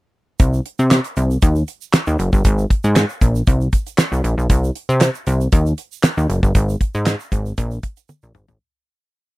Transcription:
0.40 analog synth bass C2, kick, closed hi-hat, shaker
0.53 shaker
0.66 closed hi-hat
0.79 analog synth bass C3, shaker
0.91 snare, clap, closed hi-hat, shaker
1.04 closed hi-hat, shaker
1.17 analog synth bass C2, closed hi-hat, shaker
1.31 shaker
1.42 analog synth bass D#2, kick, closed hi-hat, shaker
1.55 shaker
1.67 closed hi-hat, shaker
1.81 shaker
1.93 snare, clap, closed hi-hat, shaker
2.07 analog synth bass D#2, shaker
2.19 analog synth bass F#1, closed hi-hat, shaker
2.33 analog synth bass G1, kick, shaker
2.45 analog synth bass G#1, kick, closed hi-hat, shaker
2.58 shaker
2.70 kick, closed hi-hat
2.84 analog synth bass G#2, shaker
2.96 snare, clap, closed hi-hat, shaker
3.09 shaker
3.21 analog synth bass A#1, kick, closed hi-hat, shaker
3.35 shaker
3.47 analog synth bass C2, kick, closed hi-hat, shaker
3.61 shaker
3.73 kick, closed hi-hat, shaker
3.87 closed hi-hat, shaker
3.98 snare, clap, closed hi-hat, shaker
4.12 analog synth bass C2, shaker
4.24 analog synth bass A#1, closed hi-hat, shaker
4.38 analog synth bass B1, shaker
4.50 analog synth bass C2, kick, closed hi-hat, shaker
4.64 shaker
4.75 closed hi-hat
4.89 analog synth bass C3, shaker
5.01 snare, clap, closed hi-hat, shaker
5.15 shaker
5.27 analog synth bass C2, closed hi-hat, shaker
5.41 shaker
5.52 analog synth bass D#2, kick, closed hi-hat, shaker
5.66 shaker
5.78 closed hi-hat, shaker
5.92 shaker
6.03 snare, clap, closed hi-hat, shaker
6.17 analog synth bass D#2, shaker
6.30 analog synth bass F#1, closed hi-hat, shaker
6.43 analog synth bass G1, kick, shaker
6.55 analog synth bass G#1, kick, closed hi-hat, shaker
6.69 shaker
6.81 kick, closed hi-hat
6.95 analog synth bass G#2, shaker
7.06 snare, clap, closed hi-hat, shaker
7.20 shaker
7.32 analog synth bass G#1, kick, closed hi-hat, shaker
7.46 shaker
7.58 analog synth bass A#1, kick, closed hi-hat, shaker
7.71 shaker
7.83 kick, closed hi-hat, shaker
7.97 closed hi-hat, shaker
8.09 high tom, shaker
8.22 analog synth bass A#1, shaker
8.35 analog synth bass G#1, mid tom, shaker
8.48 analog synth bass A1, floor tom, shaker

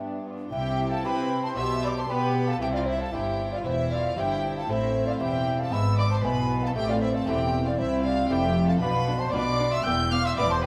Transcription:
Already playing: viola section B3, lute B3 D4 G4, flute E5
0.00 lute G2, cello section G2, violin section D4
0.25 viola section B3, violin section D4 F4
0.51 double bass section C2, cello section C3, lute C3, viola section E4, violin section G4 G5, flute E5
0.91 violin section A4 A5, flute F5
1.03 double bass section C3, lute C4 E4 G4, cello section C4, violin section B4 B5, flute G5
1.43 violin section C5 C6, flute A5
1.57 double bass section B1, cello section B2, lute B2, viola section G4, violin section E5 E6, flute C6
1.84 violin section D5 D6, flute B5
1.97 violin section C5 C6, flute A5
2.09 double bass section B2, cello section B3, lute B3 D4 G4, viola section G4, violin section B4 B5, flute G5
2.48 violin section A4 A5, flute F5
2.61 double bass section C2, cello section C3, lute C3, viola section E4, violin section G4 G5, flute E5
2.74 violin section F4 F5, flute D5
2.86 violin section E4 E5, flute C5
3.00 violin section A4 A5, flute F5
3.12 double bass section G1, cello section G2, lute G2 C4 E4, viola section E4, violin section G4 G5, flute E5
3.52 violin section F4 F5, flute D5
3.65 double bass section E1, cello section E2, lute E2, violin section E4 E5, viola section E4, flute C5
3.91 violin section F4 F5, flute D5
4.17 double bass section G1, lute G2 C4 E4, cello section G2, viola section E4, violin section G4 G5, flute E5
4.56 violin section A4 A5, flute F5
4.68 double bass section A1, lute A2, cello section A2, viola section C4, violin section E4 E5, flute C5
5.07 violin section F4 F5, flute D5
5.20 double bass section E1, lute E2 C4 E4, cello section E2, violin section G4 G5, flute E5
5.59 violin section A4 A5, flute F5
5.72 double bass section G#1, cello section G#2, lute G#2, viola section B3, violin section E5 E6, flute B5
5.98 violin section D5 D6, flute B5
6.11 violin section C5 C6, flute A5
6.23 double bass section B1, cello section B2, lute B2 B3 E4, viola section B3, violin section B4 B5, flute G#5
6.63 violin section A4 A5, flute F5
6.75 double bass section A1, lute A2, cello section A2, viola section C4, violin section G4 G5, flute E5
6.89 violin section F4 F5, flute D5
7.01 violin section E4 E5, flute C5
7.14 violin section A4 A5, flute F5
7.27 double bass section E1, cello section E2, lute E2 A3 C4 E4, violin section G4 G5, flute E5
7.65 violin section F4 F5, flute D5
7.77 cello section C2, double bass section C2, viola section C4, violin section E4 E5, flute C5
8.03 violin section F4 F5, flute D5
8.29 double bass section F1, cello section F2, lute F2 A3 C4 E4, violin section G4 G5, flute E5
8.67 violin section A4 A5, flute F5
8.80 double bass section B1, cello section B2, lute B2, viola section D4, violin section B4 B5, flute F5
9.07 viola section D4
9.19 violin section C5 C6, flute A5
9.32 double bass section B1, cello section B2, lute B2 D4 F4, viola section D4, violin section D5 D6, flute B5
9.60 viola section D4
9.71 violin section E5 E6, flute C6
9.84 double bass section E1, cello section E2, lute E2, viola section B3, violin section G5 G6, flute E6
10.11 viola section B3, violin section F5 F6, flute D6
10.24 violin section E5 E6, flute C6
10.37 double bass section E1, cello section E2, lute E2 B3 E4, viola section B3, violin section D5 D6, flute B5
10.50 violin section C5 C6, flute A5

